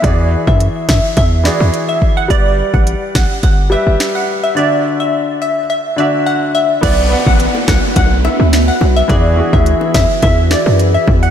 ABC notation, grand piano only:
X:1
M:4/4
L:1/8
Q:1/4=106
K:Bm
V:1 name="Grand piano"
[E,EF^G]4 z [E,EFG]3 | [G,GBd]4 z [G,GBe]3 | [D,DFe]4 z [D,DFe]3 | [B,Bdf] [B,Bdf]4 z3 |
[E,EF^G] [E,EFG]4 z3 |]